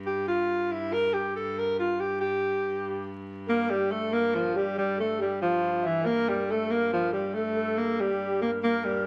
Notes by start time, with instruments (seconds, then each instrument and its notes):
Already playing: hurdy-gurdy G2
0.06 alto saxophone G4
0.28 alto saxophone F4
0.71 alto saxophone E4
0.93 alto saxophone A#4
1.13 alto saxophone G4
1.36 alto saxophone A4
1.58 alto saxophone A#4
1.79 alto saxophone F4
2.00 alto saxophone G4
2.21 alto saxophone G4
3.47 hurdy-gurdy G2, alto saxophone A#3, recorder A#4
3.70 alto saxophone G3, recorder G4
3.91 alto saxophone A3, recorder A4
4.12 alto saxophone A#3, recorder A#4
4.35 alto saxophone F3
4.55 alto saxophone G3, recorder G4
4.77 alto saxophone G3, recorder G4
4.98 alto saxophone A3, recorder A4
5.18 alto saxophone G3, recorder G4
5.42 alto saxophone F3, recorder F4
5.63 recorder F4
5.83 alto saxophone E3, recorder E5
6.03 alto saxophone A#3, recorder A#4
6.29 alto saxophone G3
6.48 alto saxophone A3, recorder A4
6.70 alto saxophone A#3, recorder A#4
6.93 alto saxophone F3
7.13 alto saxophone G3, recorder G4
7.34 alto saxophone A3, recorder A4
7.56 recorder A4
7.77 alto saxophone A#3
8.00 alto saxophone G3, recorder G4
8.41 alto saxophone A#3, recorder A#4
8.62 hurdy-gurdy G2, alto saxophone A#3, recorder A#4
8.85 alto saxophone G3